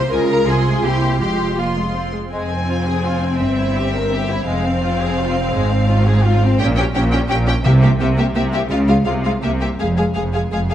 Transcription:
0.00 0.12 A#3 soft
0.00 0.12 G4 soft
0.00 0.11 C5 medium
0.00 0.12 C6 soft
0.11 0.45 C#2 soft
0.11 0.45 C#3 soft
0.11 0.45 G#3 soft
0.11 0.45 F4 soft
0.11 0.47 A#4 medium
0.11 0.19 G#5 soft
0.30 0.48 A#5 soft
0.46 0.81 C2 soft
0.46 0.82 C3 soft
0.46 0.83 G#3 soft
0.46 0.83 F4 soft
0.46 0.83 G#4 medium
0.46 0.83 C6 soft
0.82 1.19 C2 soft
0.82 1.20 C3 soft
0.82 1.20 A#3 soft
0.82 1.21 E4 soft
0.82 1.20 G4 medium
0.82 1.20 C6 soft
1.20 2.13 F1 soft
1.20 2.13 F2 soft
1.20 1.57 G#3 soft
1.20 1.58 F4 soft
1.20 1.57 G4 medium
1.20 1.57 C6 soft
1.57 1.75 A#3 soft
1.57 2.13 F4 soft
1.57 2.13 C6 soft
1.76 1.94 G#3 soft
1.94 2.13 C4 soft
2.12 2.31 G#3 soft
2.31 3.35 F1 medium
2.31 3.36 F2 soft
2.31 2.49 G#3 soft
2.31 4.43 C4 soft
2.31 3.36 G#5 soft
2.51 2.68 C4 soft
2.67 2.85 F4 soft
2.86 3.03 G#4 soft
3.05 3.22 F4 soft
3.23 3.39 C4 soft
3.39 4.47 G1 medium
3.39 4.47 G2 soft
3.39 3.57 C4 soft
3.39 4.47 E5 medium
3.59 3.76 E4 soft
3.77 3.94 G4 soft
3.94 4.12 A#4 soft
4.12 4.29 G4 medium
4.29 4.47 E4 medium
4.46 5.51 F1 medium
4.46 5.52 F2 medium
4.46 4.63 G#3 medium
4.46 6.56 C4 medium
4.46 6.55 F5 medium
4.65 4.83 C4 soft
4.83 5.01 F4 medium
5.01 5.18 G#4 medium
5.19 5.36 F4 medium
5.36 5.54 C4 medium
5.53 6.59 G#1 medium
5.53 6.60 G#2 medium
5.53 5.70 G#3 medium
5.71 5.89 C4 medium
5.89 6.06 F4 medium
6.06 6.24 G#4 medium
6.25 6.42 F4 medium
6.43 6.60 C4 medium
6.58 6.91 A#1 medium
6.58 6.91 A#2 medium
6.58 6.67 C#4 medium
6.58 6.67 G4 medium
6.58 6.66 G5 medium
6.76 6.85 C#4 medium
6.76 6.85 G4 soft
6.76 6.84 G5 medium
6.94 7.26 A#1 medium
6.94 7.27 A#2 medium
6.94 7.02 C#4 medium
6.94 7.02 G4 medium
6.94 7.02 G5 medium
7.11 7.20 C#4 medium
7.11 7.18 G4 medium
7.11 7.19 G5 soft
7.28 7.61 A#1 medium
7.28 7.62 A#2 medium
7.28 7.37 C#4 medium
7.28 7.36 G4 medium
7.28 7.38 G5 medium
7.46 7.54 C#4 medium
7.46 7.54 G4 medium
7.46 7.55 G5 medium
7.64 7.96 C2 medium
7.64 7.96 C3 medium
7.64 8.15 C3 medium
7.64 7.71 A#3 medium
7.64 7.72 G4 medium
7.64 7.72 E5 medium
7.82 7.90 A#3 medium
7.82 7.89 G4 soft
7.82 7.91 E5 soft
7.99 8.31 C2 medium
7.99 8.31 C3 medium
7.99 8.07 A#3 medium
7.99 8.07 G4 medium
7.99 8.08 E5 medium
8.17 8.25 A#3 medium
8.17 8.26 G4 medium
8.17 8.25 E5 medium
8.34 8.67 C2 medium
8.34 8.66 C3 medium
8.34 8.42 A#3 medium
8.34 8.42 G4 medium
8.34 8.43 E5 medium
8.52 8.60 A#3 medium
8.52 8.61 G4 medium
8.52 8.61 E5 medium
8.69 9.02 C#2 medium
8.69 9.02 C#3 medium
8.69 8.77 G#3 medium
8.69 8.78 F4 medium
8.69 8.78 F5 medium
8.88 8.95 G#3 soft
8.88 8.95 F4 soft
8.88 8.96 F5 soft
9.05 9.38 C2 medium
9.05 9.38 C3 medium
9.05 9.13 G#3 medium
9.05 9.13 F4 soft
9.05 9.13 F5 soft
9.24 9.32 G#3 medium
9.24 9.32 F4 soft
9.24 9.32 F5 soft
9.42 9.75 C2 medium
9.42 9.75 C3 medium
9.42 9.51 A#3 soft
9.42 9.49 G4 soft
9.42 9.50 E5 medium
9.60 9.69 A#3 soft
9.60 9.68 G4 soft
9.60 9.69 E5 soft
9.78 10.11 F1 medium
9.78 10.12 F2 medium
9.78 9.87 G#3 soft
9.78 9.87 G#4 soft
9.78 9.87 F5 soft
9.97 10.05 G#3 soft
9.97 10.04 G#4 soft
9.97 10.05 F5 soft
10.14 10.48 F1 medium
10.14 10.49 F2 medium
10.14 10.24 G#3 soft
10.14 10.22 G#4 soft
10.14 10.22 F5 soft
10.33 10.41 G#3 soft
10.33 10.41 G#4 soft
10.33 10.41 F5 soft
10.51 10.75 F1 medium
10.51 10.75 F2 soft
10.51 10.59 G#3 soft
10.51 10.59 G#4 soft
10.51 10.60 F5 soft
10.69 10.75 G#3 soft
10.69 10.75 G#4 soft
10.69 10.75 F5 soft

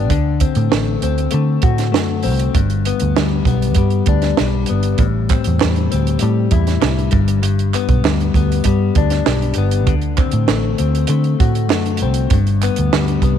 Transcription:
0.00 0.10 G1 medium
0.00 0.16 B3 medium
0.00 0.44 D4 medium
0.00 0.15 G4 medium
0.10 0.46 D2 loud
0.10 3.61 D3 medium
0.10 kick loud
0.10 closed hi-hat medium
0.40 1.02 C4 medium
0.40 kick medium
0.40 closed hi-hat medium
0.55 0.68 A2 medium
0.55 closed hi-hat medium
0.71 0.96 A1 medium
0.71 1.30 A3 medium
0.71 snare loud
1.02 1.26 D2 medium
1.02 2.22 C4 medium
1.02 closed hi-hat medium
1.18 closed hi-hat soft
1.31 1.57 D3 loud
1.31 1.91 A3 medium
1.31 closed hi-hat medium
1.62 1.95 A2 medium
1.62 2.60 F#4 medium
1.62 kick loud
1.62 closed hi-hat medium
1.78 snare soft
1.78 closed hi-hat soft
1.92 2.26 F#2 loud
1.92 2.60 A3 medium
1.92 snare loud
2.23 2.49 C2 medium
2.23 2.60 C4 medium
2.23 open hi-hat medium
2.39 closed hi-hat medium
2.55 2.92 G1 loud
2.55 4.99 G2 medium
2.55 kick medium
2.55 closed hi-hat medium
2.70 closed hi-hat soft
2.85 3.46 B3 medium
2.85 closed hi-hat medium
3.00 3.13 D2 medium
3.00 closed hi-hat soft
3.17 3.41 D2 medium
3.17 3.77 G3 medium
3.17 snare loud
3.45 3.77 B1 medium
3.45 4.68 B3 medium
3.45 kick medium
3.45 closed hi-hat medium
3.62 closed hi-hat soft
3.74 4.01 G2 loud
3.74 4.38 G3 medium
3.74 kick medium
3.74 closed hi-hat medium
3.90 closed hi-hat soft
4.06 4.32 D2 medium
4.06 5.05 D4 medium
4.06 kick loud
4.06 closed hi-hat medium
4.22 snare soft
4.22 closed hi-hat soft
4.37 4.63 B1 medium
4.37 5.61 G3 medium
4.37 snare loud
4.66 5.05 B3 medium
4.66 closed hi-hat medium
4.71 4.94 G1 medium
4.83 closed hi-hat medium
4.98 5.35 A1 medium
4.98 7.11 A2 medium
4.98 kick loud
4.98 closed hi-hat medium
5.29 5.90 C4 medium
5.29 kick medium
5.29 clap medium
5.29 closed hi-hat medium
5.44 5.58 E2 medium
5.44 closed hi-hat medium
5.60 5.87 E2 medium
5.60 6.21 G3 medium
5.60 snare loud
5.60 clap medium
5.76 closed hi-hat soft
5.91 6.16 D2 medium
5.91 7.19 C4 medium
5.91 closed hi-hat medium
6.07 closed hi-hat soft
6.19 6.46 A2 loud
6.19 6.81 G3 medium
6.19 closed hi-hat medium
6.51 6.76 E2 medium
6.51 7.19 E4 medium
6.51 kick loud
6.51 closed hi-hat medium
6.67 snare soft
6.67 closed hi-hat soft
6.81 7.07 C2 medium
6.81 8.04 G3 medium
6.81 snare loud
6.81 clap medium
6.99 closed hi-hat soft
7.11 7.74 G1 loud
7.11 7.41 G2 medium
7.11 kick loud
7.11 closed hi-hat medium
7.28 closed hi-hat medium
7.43 9.87 G2 medium
7.43 closed hi-hat medium
7.59 closed hi-hat soft
7.74 8.35 B3 medium
7.74 clap medium
7.74 closed hi-hat medium
7.89 8.01 B1 medium
7.89 kick medium
7.89 closed hi-hat medium
8.05 8.29 D2 medium
8.05 8.64 G3 medium
8.05 snare loud
8.05 clap medium
8.21 closed hi-hat soft
8.34 8.59 D2 medium
8.34 9.57 B3 medium
8.34 kick medium
8.34 closed hi-hat medium
8.52 closed hi-hat soft
8.64 8.90 G2 loud
8.64 9.25 G3 medium
8.64 kick medium
8.64 closed hi-hat medium
8.95 9.20 D2 medium
8.95 10.21 D4 medium
8.95 kick loud
8.95 closed hi-hat medium
9.10 snare soft
9.10 closed hi-hat soft
9.26 9.51 B1 medium
9.26 9.94 G3 medium
9.26 snare loud
9.26 clap medium
9.42 closed hi-hat soft
9.54 9.87 G1 medium
9.54 closed hi-hat medium
9.58 9.94 B3 medium
9.71 closed hi-hat medium
9.87 10.24 D2 loud
9.87 13.38 D3 medium
9.87 kick loud
9.87 closed hi-hat medium
10.01 closed hi-hat soft
10.17 10.77 C4 medium
10.17 kick medium
10.17 clap medium
10.17 closed hi-hat medium
10.31 10.46 A2 medium
10.31 closed hi-hat medium
10.48 10.73 A1 loud
10.48 11.09 A3 medium
10.48 snare loud
10.48 clap medium
10.78 11.04 D2 medium
10.78 12.01 C4 medium
10.78 closed hi-hat medium
10.95 closed hi-hat soft
11.07 11.34 D3 loud
11.07 11.70 A3 medium
11.07 closed hi-hat medium
11.24 closed hi-hat soft
11.40 11.71 A2 medium
11.40 12.38 F#4 medium
11.40 kick loud
11.40 closed hi-hat medium
11.55 closed hi-hat soft
11.70 12.03 F#2 loud
11.70 12.38 A3 medium
11.70 snare loud
11.70 clap medium
11.86 closed hi-hat soft
11.97 closed hi-hat medium
12.02 12.26 C2 medium
12.02 12.39 C4 medium
12.14 closed hi-hat medium
12.30 12.68 G1 loud
12.30 13.39 G2 medium
12.30 kick loud
12.30 closed hi-hat medium
12.47 closed hi-hat soft
12.62 13.24 B3 medium
12.62 clap medium
12.62 closed hi-hat medium
12.76 12.90 D2 medium
12.76 closed hi-hat medium
12.93 13.17 D2 medium
12.93 13.39 G3 medium
12.93 snare loud
12.93 clap medium
13.08 closed hi-hat soft
13.22 13.39 C2 medium
13.22 13.39 B3 medium
13.22 kick medium
13.22 closed hi-hat medium

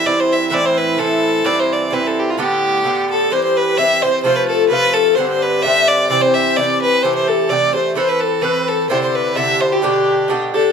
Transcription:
0.04 0.50 G2 soft
0.04 0.50 E3 medium
0.04 0.51 C4 medium
0.04 0.51 E4 medium
0.04 0.22 D5 medium
0.20 0.34 C5 medium
0.33 0.49 E5 medium
0.49 0.96 A2 medium
0.49 0.97 E3 medium
0.49 0.98 C4 medium
0.49 0.99 E4 medium
0.49 0.55 E5 medium
0.54 0.67 D5 medium
0.65 0.79 C5 medium
0.77 1.01 B4 medium
0.98 1.44 A2 soft
0.98 1.44 E3 medium
0.98 1.45 C4 medium
0.98 1.45 E4 medium
0.98 1.47 A4 medium
1.44 1.89 G2 medium
1.44 1.91 E3 medium
1.44 1.92 C4 medium
1.44 1.92 E4 medium
1.44 1.61 D5 medium
1.60 1.74 C5 medium
1.72 1.95 D5 medium
1.91 2.37 G2 medium
1.91 2.38 E3 soft
1.91 2.38 C4 medium
1.91 2.39 E4 soft
1.91 2.08 B4 medium
2.07 2.21 A4 medium
2.20 2.31 G4 medium
2.30 2.39 F4 medium
2.37 2.83 A2 medium
2.37 2.84 D3 medium
2.37 2.85 B3 medium
2.37 2.85 G4 medium
2.37 3.07 G4 medium
2.84 3.30 A2 soft
2.84 3.31 D3 medium
2.84 3.31 B3 medium
2.84 3.31 G4 medium
3.11 3.34 A4 medium
3.11 3.31 A4 medium
3.30 3.76 G2 medium
3.30 3.77 E3 medium
3.30 3.79 C4 medium
3.30 3.79 G4 medium
3.30 3.43 C5 medium
3.43 3.58 C5 medium
3.57 3.79 B4 medium
3.77 4.03 G2 soft
3.77 4.04 E3 medium
3.77 4.02 C4 medium
3.77 4.01 G4 medium
3.77 4.04 E5 medium
4.02 4.24 E3 soft
4.02 4.25 C4 soft
4.02 4.24 G4 soft
4.02 4.22 C5 medium
4.02 4.24 C5 medium
4.23 4.68 C3 soft
4.23 4.69 F3 medium
4.23 4.70 A3 medium
4.23 4.72 F4 medium
4.23 4.37 C5 medium
4.23 4.45 C5 medium
4.35 4.48 B4 medium
4.44 4.52 B4 medium
4.48 4.69 A4 medium
4.48 4.73 A4 medium
4.69 5.16 C3 soft
4.69 5.17 F3 medium
4.69 5.18 A3 medium
4.69 5.19 F4 medium
4.69 4.95 B4 loud
4.69 4.98 B4 medium
4.93 5.17 A4 medium
5.15 5.63 G2 medium
5.15 5.64 D3 medium
5.15 5.66 C4 medium
5.15 5.67 G4 medium
5.15 5.28 C5 medium
5.15 5.29 C5 medium
5.28 5.44 C5 medium
5.42 5.64 B4 medium
5.62 6.09 G2 medium
5.62 6.10 D3 medium
5.62 5.90 E5 loud
5.62 6.10 E5 medium
5.62 5.67 F5 medium
5.66 6.11 C4 medium
5.66 6.11 G4 medium
5.88 6.09 D5 medium
6.10 6.55 C3 medium
6.10 6.57 E3 medium
6.10 6.58 C4 medium
6.10 6.58 G4 medium
6.10 6.23 D5 medium
6.10 6.24 D5 medium
6.22 6.36 C5 medium
6.22 6.29 D5 medium
6.28 6.59 C5 medium
6.34 6.58 E5 medium
6.56 7.02 C3 medium
6.56 7.04 E3 medium
6.56 7.04 C4 soft
6.56 7.04 G4 medium
6.56 6.81 D5 medium
6.56 6.62 E5 medium
6.61 6.83 D5 medium
6.82 7.04 B4 medium
6.82 7.05 B4 medium
7.03 7.48 C3 medium
7.03 7.50 E3 medium
7.03 7.50 A3 medium
7.03 7.51 G4 medium
7.03 7.14 C5 medium
7.03 7.16 C5 medium
7.15 7.29 C5 medium
7.15 7.30 C5 medium
7.28 7.51 A4 medium
7.28 7.50 A4 medium
7.49 7.75 C3 soft
7.49 7.76 E3 medium
7.49 7.74 A3 medium
7.49 7.73 G4 medium
7.49 7.74 D5 medium
7.49 7.77 D5 medium
7.74 7.94 E3 soft
7.74 7.96 A3 soft
7.74 7.96 G4 soft
7.74 7.95 C5 medium
7.74 7.97 C5 medium
7.95 8.40 E3 medium
7.95 8.42 C4 medium
7.95 8.43 A4 medium
7.95 8.43 B4 medium
7.95 8.10 C5 medium
7.95 8.12 C5 medium
8.08 8.22 B4 medium
8.08 8.25 B4 medium
8.20 8.44 A4 medium
8.20 8.45 A4 medium
8.41 8.89 E3 medium
8.41 8.90 C4 medium
8.41 8.90 A4 medium
8.41 8.70 B4 medium
8.41 8.71 B4 medium
8.41 8.90 B4 medium
8.68 8.89 A4 medium
8.68 8.92 A4 medium
8.89 9.34 C3 medium
8.89 9.35 D3 medium
8.89 9.36 E4 medium
8.89 9.38 G4 medium
8.89 9.02 C5 medium
9.02 9.16 C5 medium
9.14 9.37 B4 medium
9.14 9.38 B4 medium
9.35 9.82 C3 medium
9.35 9.82 D3 medium
9.35 9.83 E4 medium
9.35 9.83 G4 medium
9.35 9.61 E5 medium
9.35 9.62 E5 medium
9.61 9.74 C5 medium
9.72 10.42 G4 medium
9.72 10.30 G4 medium
9.82 10.27 B2 medium
9.82 10.28 D3 medium
9.82 10.29 D4 medium
9.82 10.30 G4 medium
10.28 10.54 B2 medium
10.28 10.55 D3 medium
10.28 10.54 D4 medium
10.28 10.53 G4 medium
10.54 10.72 D3 soft
10.54 10.72 D4 soft
10.54 10.72 G4 soft
10.54 10.72 A4 medium

